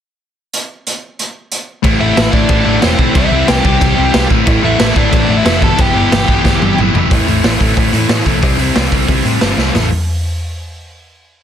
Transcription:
0.53 closed hi-hat
0.87 closed hi-hat
1.19 closed hi-hat
1.52 closed hi-hat
1.83 A1 A2 E3 A3 C4 E4, kick, crash
2.00 A1 A2 E3 A3 C4 E4 E5
2.16 A1 A2 E3 A3 C4 E4, snare, crash
2.33 A1 A2 E3 A3 C4 D4 E4 D5, kick
2.49 A1 A2 E3 A3 C4 E4, kick, crash
2.65 A1 A2 E3 A3 C4 E4
2.82 E1 A2 E3 A3 C4 E4 C5, snare, crash
2.99 B1 A2 E3 A3 C4 E4, kick
3.15 C2 C3 E3 G3 C4 E4 E5, kick, crash
3.31 C2 C3 E3 G3 C4 E4
3.48 C2 C3 E3 G3 C4 E4 G4 G5, snare, crash
3.65 C2 C3 E3 G3 C4 E4 G4 G5, kick
3.81 C2 C3 E3 G3 C4 E4, kick, crash
3.97 C2 C3 E3 G3 C4 E4
4.13 C2 C3 E3 G3 C4 E4, snare, crash
4.30 A1 A2 E3 A3 C4 E4, kick
4.47 A1 A2 E3 A3 C4 E4, kick, crash
4.63 A1 A2 E3 A3 C4 E4 E5
4.79 A1 A2 E3 A3 C4 E4, snare, crash
4.95 A1 A2 E3 A3 C4 D4 E4 D5, kick
5.11 A1 A2 E3 A3 C4 E4, kick, crash
5.28 A1 A2 E3 A3 C4 E4
5.37 E4 E5
5.45 F1 A2 E3 A3 C4 E4, snare, crash
5.60 G1 E2 B2 E3 G3 B3 E4 G4 A4 A5, kick
5.76 G1 E2 B2 E3 G3 B3 E4 G4, kick, crash
5.81 G5
5.94 G1 E2 B2 E3 G3 B3 E4 G4
6.10 G1 E2 B2 E3 G3 B3 E4 G4, snare, crash
6.28 G1 E2 B2 E3 G3 B3 E4 G4, kick
6.44 G1 E2 B2 E3 G3 B3 E4 G4, kick, snare
6.61 G1 E2 B2 E3 G3 B3 E4 G4, high tom
6.78 G1 E2 B2 E3 G3 B3 E4 G4, mid tom
6.94 F1 E2 B2 E3 G3 B3 E4 G4, floor tom
7.11 A1 A2 E3 A3 C4 E4, kick, open hi-hat
7.27 A1 A2 E3 A3 C4 E4, open hi-hat
7.43 A1 A2 E3 A3 C4 E4, snare, open hi-hat
7.61 A1 A2 E3 A3 C4 E4, kick, open hi-hat
7.77 A1 A2 E3 A3 C4 E4, kick, open hi-hat
7.93 A2 E3 A3 C4 E4, open hi-hat
8.09 A2 E3 A3 C4 E4, snare, open hi-hat
8.26 B1 A2 E3 A3 C4 E4, kick, open hi-hat
8.42 C2 C3 E3 G3 C4 E4, kick, open hi-hat
8.58 C2 C3 E3 G3 C4 E4, open hi-hat
8.76 C2 C3 E3 G3 C4 E4, snare, open hi-hat
8.92 C2 C3 E3 G3 C4 E4, kick, open hi-hat
9.08 C2 C3 E3 G3 C4 E4, kick, open hi-hat
9.25 A2 C3 E3 G3 C4 E4, open hi-hat
9.41 G1 C3 E3 G3 C4 E4, snare, open hi-hat
9.57 C2 C3 E3 G3 C4 E4, snare
9.74 A1 A2 E3 A3 C4 E4 A4, snare, floor tom, open hi-hat

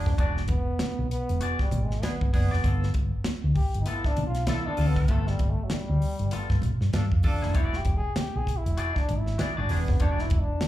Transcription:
Already playing: D4
0.06 F#1, kick, snare
0.18 E1 D4 F#4 G#4 D5, kick, closed hi-hat, muted conga
0.37 snare
0.48 E1 B3, kick, closed hi-hat, muted conga
0.79 muted fingered electric bass stroke, snare, closed hi-hat, high conga
0.99 B1
1.11 B3, closed hi-hat
1.29 E1, closed hi-hat
1.41 F#4 G#4 D5, closed hi-hat
1.59 G3, kick, snare
1.71 G#1, closed hi-hat, muted conga, low conga
1.83 G#3
1.91 snare
2.03 B3 D4 G#4, snare, closed hi-hat, high conga
2.21 G#1, kick
2.33 F#1 B3 D4 G#4, kick, open hi-hat, high conga
2.51 E1 F#4 G#4 D5, snare
2.64 G1 B3 F4 A4, kick, closed hi-hat, muted conga
2.83 snare
2.94 G1, kick, closed hi-hat, muted conga
3.24 muted fingered electric bass stroke, snare, closed hi-hat, high conga
3.44 D2
3.55 G4, kick, open hi-hat
3.74 G1, closed hi-hat
3.81 D#4
3.86 B3 E4 F4 A4, closed hi-hat
4.04 D4, kick, snare
4.17 B1, closed hi-hat, muted conga
4.27 F4
4.35 snare, closed hi-hat
4.46 B3 D4 E4 F4 A4, snare, closed hi-hat, high conga
4.66 B3 D4 F4 A4, muted fingered electric bass stroke
4.77 D2 D4 F4 A4, open hi-hat, high conga
4.88 B3
4.96 kick, snare
5.08 G1 A3 B3 F4 A4, kick, closed hi-hat, muted conga
5.27 G3, snare
5.39 G1, kick, closed hi-hat, muted conga
5.50 A3
5.64 F#3
5.70 G3, muted fingered electric bass stroke, snare, closed hi-hat, high conga
5.89 D2
6.02 open hi-hat
6.19 G1, closed hi-hat
6.31 B3 F4 A4, closed hi-hat, muted conga
6.50 G2, kick, snare
6.62 closed hi-hat, muted conga, low conga
6.81 G2, snare
6.93 G2 D4 F4 A4, snare, closed hi-hat, high conga
7.12 F2, kick
7.23 D4 F4 A4, kick, open hi-hat, high conga
7.42 F1 B3 F4 A4, snare
7.54 E1 E4 F#4 G#4 D5, kick, closed hi-hat, muted conga
7.73 G4, snare
7.85 E1, kick, closed hi-hat, muted conga
7.97 G#4
8.16 G4, muted fingered electric bass stroke, snare, closed hi-hat, high conga
8.35 B1 G#4
8.47 kick, closed hi-hat
8.57 E4
8.66 E1, closed hi-hat
8.77 F#4 G#4 D5, closed hi-hat
8.96 D4, kick, snare
9.09 G#1, closed hi-hat, muted conga
9.18 E4
9.26 snare
9.38 B3 D4 F#4 G#4 D5, snare, closed hi-hat, high conga
9.57 G#1 D4 F#4 G#4 D5
9.69 E1 B3 D4 G#4, open hi-hat, high conga
9.76 B3 D4
9.88 F#1, kick, snare
10.00 E1 D4 F#4 G#4 D5, kick, closed hi-hat, muted conga
10.19 E4, snare
10.30 E1, kick, closed hi-hat, muted conga
10.40 D4
10.61 muted fingered electric bass stroke, snare, closed hi-hat, high conga

